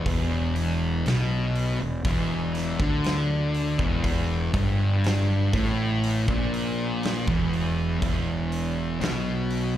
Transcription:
0.06 E1 E2, kick, open hi-hat
0.56 open hi-hat
1.06 B1 B2, snare, open hi-hat
1.55 open hi-hat
1.81 E1 E2
2.05 E1 E2, kick, open hi-hat
2.55 snare, open hi-hat
2.80 D2 D3, kick
3.04 snare, open hi-hat
3.55 open hi-hat
3.79 E1 E2, kick
4.04 kick, open hi-hat
4.54 G1 G2, kick, open hi-hat
5.04 snare, open hi-hat
5.53 A1 A2, kick, open hi-hat
6.04 open hi-hat
6.28 A#1 A#2, kick
6.54 open hi-hat
7.03 snare, open hi-hat
7.27 E1 E2, kick
7.53 open hi-hat
8.01 E1 E2, kick, open hi-hat
8.52 open hi-hat
9.00 B1 B2, snare, open hi-hat
9.51 open hi-hat

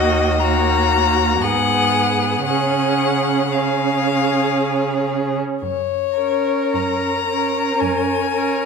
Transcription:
Already playing: D#2 A#3 F#4 D#5
0.40 A#3 F#4 A#5
1.41 G#2 B3 G#4 F#5
2.46 C#3 C#4 G#4 F#5
3.52 C#4 G#4 F5
5.62 F#2 C#5
6.18 C#4 A#4
6.74 F#2 A#5
7.29 C#4 A#4
7.80 F#2 G#5
8.32 C#4 A#4

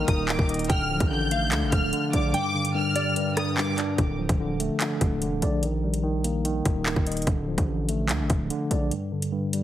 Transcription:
Already playing: D#3 G3 A#3 D#4 A#4 G5 A#5
0.08 D#1 D#6, kick, closed hi-hat
0.28 D1 D#3 D6, clap
0.39 D#1, kick
0.49 D#5, closed hi-hat
0.54 closed hi-hat
0.59 closed hi-hat
0.64 closed hi-hat
0.69 D1 D3 D4 A4 F5 G5 F6, kick, closed hi-hat
0.91 F3
1.00 A1, kick, closed hi-hat
1.11 D3 G6
1.31 A3 F5, closed hi-hat
1.52 D2 D3, clap, closed hi-hat
1.62 A1
1.72 D1 F6, kick, closed hi-hat
1.93 D3, closed hi-hat
2.13 A#1 D5 D6, closed hi-hat
2.33 G2 G3 A#4 G5 D6, closed hi-hat
2.55 D3
2.65 closed hi-hat
2.74 G2 F6
2.96 G3 D5, closed hi-hat
3.16 G2, closed hi-hat
3.37 D#6, cross-stick, closed hi-hat
3.57 G2 D6, clap
3.78 D4, clap, closed hi-hat
3.98 D1 D3, kick, closed hi-hat
4.19 F3
4.29 D1, kick, closed hi-hat
4.40 D3
4.50 D#1
4.60 A3, closed hi-hat
4.80 D3, clap, closed hi-hat
5.01 D1, kick, closed hi-hat
5.22 F1 D3, closed hi-hat
5.32 D1
5.42 A#1 D5, closed hi-hat
5.63 D#3, closed hi-hat
5.84 G3
5.94 closed hi-hat
6.04 D#3
6.24 A#3, closed hi-hat
6.45 D#3, closed hi-hat
6.65 D#1, kick, closed hi-hat
6.86 D1 D#3, clap
6.96 D#1, kick
7.07 D#5, closed hi-hat
7.12 closed hi-hat
7.17 closed hi-hat
7.22 closed hi-hat
7.27 D1 D3, kick, closed hi-hat
7.48 F3
7.58 A1, kick, closed hi-hat
7.68 D3
7.89 A3, closed hi-hat
8.09 D2 D3, clap, closed hi-hat
8.20 A1
8.30 D1, kick, closed hi-hat
8.50 D3, closed hi-hat
8.71 A#1 D5, closed hi-hat
8.91 G2, closed hi-hat
9.12 D3
9.22 closed hi-hat
9.32 G2
9.53 G3, closed hi-hat

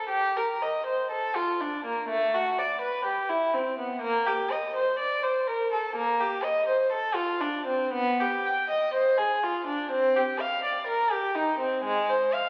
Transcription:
0.09 G4
0.37 A#4
0.62 D#5
0.87 C5
1.11 A4
1.36 F4
1.61 D4
1.85 A#3
2.09 A3
2.34 F#4
2.59 D5
2.82 B4
3.05 G4
3.29 E4
3.54 C4
3.78 B3
4.02 A#3
4.26 G4
4.51 D#5
4.76 C5
4.99 D5
5.23 C5
5.48 A#4
5.72 A4
5.96 A#3
6.21 G4
6.44 D#5
6.68 C5
6.92 A4
7.15 F4
7.41 D4
7.66 C4
7.93 B3
8.20 G4
8.46 G5
8.70 D#5
8.94 C5
9.18 G#4
9.43 F4
9.67 D4
9.91 C4
10.16 G4
10.40 F5
10.64 D5
10.87 A#4
11.12 G4
11.35 D#4
11.59 C4
11.84 G#3
12.09 C5
12.34 F5

